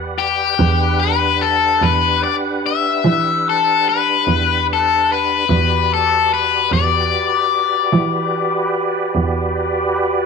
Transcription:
0.00 0.55 E2 medium
0.00 0.54 G4 medium
0.00 0.55 B4 medium
0.00 0.55 D5 medium
0.00 0.55 F#5 medium
0.18 1.03 G4 medium
0.57 1.78 E2 loud
0.57 5.45 D4 medium
0.57 5.45 G4 medium
0.57 5.45 B4 medium
0.57 5.45 F#5 medium
1.00 1.42 B4 medium
1.41 1.84 A4 medium
1.82 2.20 E2 medium
1.82 2.23 B4 medium
2.23 2.34 D5 medium
2.66 3.49 E5 medium
3.05 4.23 E3 loud
3.49 3.89 A4 medium
3.89 4.66 B4 medium
4.27 5.46 E2 medium
4.73 5.12 A4 medium
5.12 5.93 B4 medium
5.49 6.68 E2 loud
5.49 10.26 F#4 medium
5.49 10.26 G4 medium
5.49 10.26 B4 medium
5.49 10.26 D5 medium
5.94 6.33 A4 medium
6.34 6.71 B4 medium
6.72 7.09 E2 medium
6.72 9.13 D5 medium
7.93 9.12 E3 loud
9.15 10.26 E2 medium

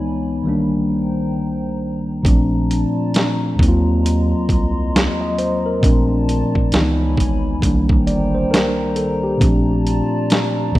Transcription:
0.00 0.46 C#2 medium
0.00 0.45 E3 medium
0.00 0.46 E3 medium
0.00 0.46 G#3 medium
0.00 0.47 B3 medium
0.00 0.47 D#4 medium
0.00 0.45 C#5 medium
0.00 0.45 G#5 medium
0.00 0.45 B5 medium
0.42 2.20 C2 medium
0.42 2.20 D#3 medium
0.42 2.21 G3 medium
0.42 2.23 C5 medium
0.47 2.23 D#3 medium
0.47 2.22 A#3 medium
0.47 2.23 D4 medium
0.47 2.23 G5 medium
0.47 6.69 A#5 medium
2.22 2.85 A#1 loud
2.22 3.58 A#2 medium
2.22 3.58 F3 medium
2.22 3.59 A3 medium
2.22 3.59 C4 medium
2.22 3.60 D4 medium
2.22 3.58 F4 medium
2.22 3.58 D5 medium
2.22 3.58 A5 medium
2.22 kick loud
2.22 closed hi-hat medium
2.71 closed hi-hat medium
3.14 snare medium
3.14 closed hi-hat medium
3.55 5.77 D#2 medium
3.55 4.34 D#2 loud
3.55 5.78 F#3 medium
3.55 5.79 A#3 medium
3.55 5.81 D#5 medium
3.59 5.81 F#3 medium
3.59 5.80 C4 medium
3.59 3.69 D#4 medium
3.59 5.81 C6 medium
3.59 kick loud
3.59 closed hi-hat medium
3.68 5.84 F4 medium
4.06 closed hi-hat loud
4.49 5.09 C2 medium
4.49 kick medium
4.49 closed hi-hat soft
4.96 snare loud
4.96 closed hi-hat medium
5.21 5.37 D#5 medium
5.38 5.64 C5 medium
5.38 closed hi-hat medium
5.66 6.08 A#4 medium
5.81 6.44 A#1 loud
5.81 6.71 A#2 medium
5.81 6.72 F3 medium
5.81 6.72 A3 medium
5.81 6.73 C4 medium
5.81 6.73 D4 medium
5.81 6.71 F4 medium
5.81 6.71 D5 medium
5.81 6.71 A5 medium
5.81 kick loud
5.81 closed hi-hat medium
6.29 closed hi-hat medium
6.55 kick medium
6.72 7.62 C#2 medium
6.72 7.19 C#2 medium
6.72 6.80 D#3 medium
6.72 7.62 E3 medium
6.72 7.62 G#3 medium
6.72 7.63 B3 medium
6.72 7.63 D#4 medium
6.72 7.61 C#5 medium
6.72 7.61 G#5 medium
6.72 7.61 B5 medium
6.72 snare loud
6.72 closed hi-hat medium
6.79 7.65 E3 medium
7.17 7.55 G#1 medium
7.17 kick medium
7.17 closed hi-hat medium
7.59 9.36 C2 medium
7.59 8.00 C2 loud
7.59 9.37 D#3 medium
7.59 9.39 D#3 medium
7.59 9.37 G3 medium
7.59 kick medium
7.63 9.38 A#3 medium
7.63 9.39 D4 medium
7.63 9.40 C5 medium
7.63 9.40 G5 medium
7.63 10.79 A#5 medium
7.63 closed hi-hat medium
7.89 kick medium
8.07 8.44 G1 loud
8.07 8.33 D5 medium
8.07 closed hi-hat medium
8.35 8.51 C5 medium
8.51 8.94 A#4 medium
8.51 snare loud
8.51 closed hi-hat medium
8.96 9.22 A4 medium
8.96 closed hi-hat medium
9.24 9.66 G4 medium
9.38 10.02 A#1 medium
9.38 10.74 A#2 medium
9.38 10.74 F3 medium
9.38 10.75 A3 medium
9.38 10.75 C4 medium
9.38 10.75 D4 medium
9.38 kick loud
9.38 closed hi-hat medium
9.42 10.75 F4 medium
9.42 10.75 D5 medium
9.42 10.75 A5 medium
9.87 closed hi-hat medium
10.30 snare loud
10.30 closed hi-hat medium
10.71 10.79 D#2 medium
10.71 10.79 D#2 loud
10.71 10.79 F#3 medium
10.71 10.79 A#3 medium
10.71 10.79 C6 medium
10.71 kick loud
10.76 10.79 D#5 medium

